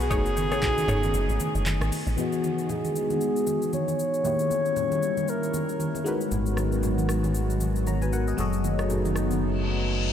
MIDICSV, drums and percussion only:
0, 0, Header, 1, 2, 480
1, 0, Start_track
1, 0, Tempo, 517241
1, 101, Time_signature, 4, 2, 24, 8
1, 9398, End_track
2, 0, Start_track
2, 0, Title_t, "Drums"
2, 2, Note_on_c, 9, 82, 53
2, 95, Note_off_c, 9, 82, 0
2, 101, Note_on_c, 9, 36, 126
2, 101, Note_on_c, 9, 82, 94
2, 102, Note_on_c, 9, 64, 73
2, 194, Note_off_c, 9, 36, 0
2, 194, Note_off_c, 9, 82, 0
2, 195, Note_off_c, 9, 64, 0
2, 237, Note_on_c, 9, 82, 59
2, 330, Note_off_c, 9, 82, 0
2, 343, Note_on_c, 9, 82, 91
2, 344, Note_on_c, 9, 63, 72
2, 436, Note_off_c, 9, 82, 0
2, 437, Note_off_c, 9, 63, 0
2, 480, Note_on_c, 9, 37, 93
2, 480, Note_on_c, 9, 82, 49
2, 573, Note_off_c, 9, 37, 0
2, 573, Note_off_c, 9, 82, 0
2, 579, Note_on_c, 9, 82, 72
2, 580, Note_on_c, 9, 64, 77
2, 581, Note_on_c, 9, 36, 94
2, 582, Note_on_c, 9, 39, 92
2, 672, Note_off_c, 9, 82, 0
2, 673, Note_off_c, 9, 64, 0
2, 674, Note_off_c, 9, 36, 0
2, 675, Note_off_c, 9, 39, 0
2, 722, Note_on_c, 9, 63, 79
2, 723, Note_on_c, 9, 82, 54
2, 815, Note_off_c, 9, 63, 0
2, 816, Note_off_c, 9, 82, 0
2, 820, Note_on_c, 9, 45, 112
2, 824, Note_on_c, 9, 82, 96
2, 913, Note_off_c, 9, 45, 0
2, 916, Note_off_c, 9, 82, 0
2, 959, Note_on_c, 9, 82, 56
2, 962, Note_on_c, 9, 63, 79
2, 1052, Note_off_c, 9, 82, 0
2, 1055, Note_off_c, 9, 63, 0
2, 1058, Note_on_c, 9, 82, 84
2, 1151, Note_off_c, 9, 82, 0
2, 1200, Note_on_c, 9, 82, 55
2, 1293, Note_off_c, 9, 82, 0
2, 1298, Note_on_c, 9, 82, 113
2, 1303, Note_on_c, 9, 63, 72
2, 1391, Note_off_c, 9, 82, 0
2, 1396, Note_off_c, 9, 63, 0
2, 1440, Note_on_c, 9, 82, 62
2, 1533, Note_off_c, 9, 82, 0
2, 1540, Note_on_c, 9, 39, 89
2, 1542, Note_on_c, 9, 63, 80
2, 1543, Note_on_c, 9, 82, 82
2, 1633, Note_off_c, 9, 39, 0
2, 1635, Note_off_c, 9, 63, 0
2, 1636, Note_off_c, 9, 82, 0
2, 1681, Note_on_c, 9, 63, 72
2, 1684, Note_on_c, 9, 37, 103
2, 1685, Note_on_c, 9, 82, 56
2, 1773, Note_off_c, 9, 63, 0
2, 1776, Note_off_c, 9, 37, 0
2, 1778, Note_off_c, 9, 82, 0
2, 1782, Note_on_c, 9, 63, 53
2, 1785, Note_on_c, 9, 46, 74
2, 1785, Note_on_c, 9, 82, 90
2, 1875, Note_off_c, 9, 63, 0
2, 1878, Note_off_c, 9, 46, 0
2, 1878, Note_off_c, 9, 82, 0
2, 1921, Note_on_c, 9, 82, 55
2, 2014, Note_off_c, 9, 82, 0
2, 2021, Note_on_c, 9, 64, 66
2, 2021, Note_on_c, 9, 82, 82
2, 2114, Note_off_c, 9, 64, 0
2, 2114, Note_off_c, 9, 82, 0
2, 2157, Note_on_c, 9, 82, 52
2, 2249, Note_off_c, 9, 82, 0
2, 2263, Note_on_c, 9, 82, 77
2, 2264, Note_on_c, 9, 63, 65
2, 2356, Note_off_c, 9, 82, 0
2, 2357, Note_off_c, 9, 63, 0
2, 2399, Note_on_c, 9, 82, 43
2, 2492, Note_off_c, 9, 82, 0
2, 2499, Note_on_c, 9, 82, 60
2, 2500, Note_on_c, 9, 64, 71
2, 2592, Note_off_c, 9, 82, 0
2, 2593, Note_off_c, 9, 64, 0
2, 2642, Note_on_c, 9, 63, 67
2, 2642, Note_on_c, 9, 82, 53
2, 2735, Note_off_c, 9, 63, 0
2, 2735, Note_off_c, 9, 82, 0
2, 2744, Note_on_c, 9, 82, 85
2, 2837, Note_off_c, 9, 82, 0
2, 2879, Note_on_c, 9, 82, 52
2, 2880, Note_on_c, 9, 63, 71
2, 2972, Note_off_c, 9, 82, 0
2, 2973, Note_off_c, 9, 63, 0
2, 2978, Note_on_c, 9, 82, 76
2, 3071, Note_off_c, 9, 82, 0
2, 3121, Note_on_c, 9, 82, 53
2, 3214, Note_off_c, 9, 82, 0
2, 3218, Note_on_c, 9, 82, 96
2, 3220, Note_on_c, 9, 63, 70
2, 3311, Note_off_c, 9, 82, 0
2, 3313, Note_off_c, 9, 63, 0
2, 3360, Note_on_c, 9, 82, 54
2, 3453, Note_off_c, 9, 82, 0
2, 3462, Note_on_c, 9, 82, 73
2, 3463, Note_on_c, 9, 63, 73
2, 3555, Note_off_c, 9, 63, 0
2, 3555, Note_off_c, 9, 82, 0
2, 3601, Note_on_c, 9, 63, 67
2, 3604, Note_on_c, 9, 82, 52
2, 3694, Note_off_c, 9, 63, 0
2, 3697, Note_off_c, 9, 82, 0
2, 3705, Note_on_c, 9, 82, 81
2, 3798, Note_off_c, 9, 82, 0
2, 3842, Note_on_c, 9, 82, 49
2, 3934, Note_off_c, 9, 82, 0
2, 3941, Note_on_c, 9, 82, 85
2, 3942, Note_on_c, 9, 64, 68
2, 4034, Note_off_c, 9, 82, 0
2, 4035, Note_off_c, 9, 64, 0
2, 4076, Note_on_c, 9, 82, 55
2, 4169, Note_off_c, 9, 82, 0
2, 4183, Note_on_c, 9, 82, 79
2, 4184, Note_on_c, 9, 63, 66
2, 4276, Note_off_c, 9, 82, 0
2, 4277, Note_off_c, 9, 63, 0
2, 4320, Note_on_c, 9, 82, 43
2, 4413, Note_off_c, 9, 82, 0
2, 4420, Note_on_c, 9, 82, 64
2, 4421, Note_on_c, 9, 64, 73
2, 4513, Note_off_c, 9, 82, 0
2, 4514, Note_off_c, 9, 64, 0
2, 4563, Note_on_c, 9, 63, 68
2, 4563, Note_on_c, 9, 82, 51
2, 4656, Note_off_c, 9, 63, 0
2, 4656, Note_off_c, 9, 82, 0
2, 4665, Note_on_c, 9, 82, 89
2, 4758, Note_off_c, 9, 82, 0
2, 4800, Note_on_c, 9, 82, 53
2, 4801, Note_on_c, 9, 63, 72
2, 4893, Note_off_c, 9, 82, 0
2, 4894, Note_off_c, 9, 63, 0
2, 4899, Note_on_c, 9, 82, 79
2, 4991, Note_off_c, 9, 82, 0
2, 5042, Note_on_c, 9, 82, 53
2, 5135, Note_off_c, 9, 82, 0
2, 5139, Note_on_c, 9, 82, 95
2, 5140, Note_on_c, 9, 63, 71
2, 5232, Note_off_c, 9, 63, 0
2, 5232, Note_off_c, 9, 82, 0
2, 5281, Note_on_c, 9, 82, 56
2, 5374, Note_off_c, 9, 82, 0
2, 5380, Note_on_c, 9, 63, 71
2, 5382, Note_on_c, 9, 82, 77
2, 5473, Note_off_c, 9, 63, 0
2, 5475, Note_off_c, 9, 82, 0
2, 5519, Note_on_c, 9, 63, 68
2, 5524, Note_on_c, 9, 82, 52
2, 5612, Note_off_c, 9, 63, 0
2, 5617, Note_off_c, 9, 82, 0
2, 5624, Note_on_c, 9, 82, 82
2, 5717, Note_off_c, 9, 82, 0
2, 5761, Note_on_c, 9, 82, 47
2, 5854, Note_off_c, 9, 82, 0
2, 5860, Note_on_c, 9, 82, 89
2, 5863, Note_on_c, 9, 64, 67
2, 5953, Note_off_c, 9, 82, 0
2, 5955, Note_off_c, 9, 64, 0
2, 5996, Note_on_c, 9, 82, 55
2, 6088, Note_off_c, 9, 82, 0
2, 6097, Note_on_c, 9, 37, 89
2, 6102, Note_on_c, 9, 63, 67
2, 6103, Note_on_c, 9, 82, 76
2, 6190, Note_off_c, 9, 37, 0
2, 6195, Note_off_c, 9, 63, 0
2, 6195, Note_off_c, 9, 82, 0
2, 6237, Note_on_c, 9, 82, 43
2, 6330, Note_off_c, 9, 82, 0
2, 6338, Note_on_c, 9, 82, 63
2, 6339, Note_on_c, 9, 64, 72
2, 6431, Note_off_c, 9, 82, 0
2, 6432, Note_off_c, 9, 64, 0
2, 6479, Note_on_c, 9, 63, 71
2, 6482, Note_on_c, 9, 82, 52
2, 6572, Note_off_c, 9, 63, 0
2, 6575, Note_off_c, 9, 82, 0
2, 6577, Note_on_c, 9, 37, 96
2, 6583, Note_on_c, 9, 82, 90
2, 6670, Note_off_c, 9, 37, 0
2, 6676, Note_off_c, 9, 82, 0
2, 6718, Note_on_c, 9, 82, 53
2, 6719, Note_on_c, 9, 63, 75
2, 6811, Note_off_c, 9, 82, 0
2, 6812, Note_off_c, 9, 63, 0
2, 6817, Note_on_c, 9, 82, 80
2, 6910, Note_off_c, 9, 82, 0
2, 6961, Note_on_c, 9, 82, 54
2, 7054, Note_off_c, 9, 82, 0
2, 7058, Note_on_c, 9, 82, 102
2, 7059, Note_on_c, 9, 63, 68
2, 7151, Note_off_c, 9, 63, 0
2, 7151, Note_off_c, 9, 82, 0
2, 7199, Note_on_c, 9, 82, 55
2, 7292, Note_off_c, 9, 82, 0
2, 7301, Note_on_c, 9, 63, 72
2, 7301, Note_on_c, 9, 82, 75
2, 7394, Note_off_c, 9, 63, 0
2, 7394, Note_off_c, 9, 82, 0
2, 7439, Note_on_c, 9, 63, 65
2, 7443, Note_on_c, 9, 82, 53
2, 7532, Note_off_c, 9, 63, 0
2, 7535, Note_off_c, 9, 82, 0
2, 7543, Note_on_c, 9, 82, 79
2, 7635, Note_off_c, 9, 82, 0
2, 7679, Note_on_c, 9, 82, 49
2, 7772, Note_off_c, 9, 82, 0
2, 7778, Note_on_c, 9, 82, 88
2, 7780, Note_on_c, 9, 64, 70
2, 7871, Note_off_c, 9, 82, 0
2, 7873, Note_off_c, 9, 64, 0
2, 7914, Note_on_c, 9, 82, 56
2, 8007, Note_off_c, 9, 82, 0
2, 8021, Note_on_c, 9, 63, 66
2, 8021, Note_on_c, 9, 82, 80
2, 8114, Note_off_c, 9, 63, 0
2, 8114, Note_off_c, 9, 82, 0
2, 8157, Note_on_c, 9, 37, 90
2, 8157, Note_on_c, 9, 82, 45
2, 8250, Note_off_c, 9, 37, 0
2, 8250, Note_off_c, 9, 82, 0
2, 8258, Note_on_c, 9, 82, 66
2, 8260, Note_on_c, 9, 64, 72
2, 8350, Note_off_c, 9, 82, 0
2, 8353, Note_off_c, 9, 64, 0
2, 8400, Note_on_c, 9, 82, 52
2, 8401, Note_on_c, 9, 63, 72
2, 8493, Note_off_c, 9, 82, 0
2, 8494, Note_off_c, 9, 63, 0
2, 8497, Note_on_c, 9, 37, 90
2, 8503, Note_on_c, 9, 82, 91
2, 8589, Note_off_c, 9, 37, 0
2, 8596, Note_off_c, 9, 82, 0
2, 8638, Note_on_c, 9, 82, 51
2, 8640, Note_on_c, 9, 63, 72
2, 8731, Note_off_c, 9, 82, 0
2, 8733, Note_off_c, 9, 63, 0
2, 9398, End_track
0, 0, End_of_file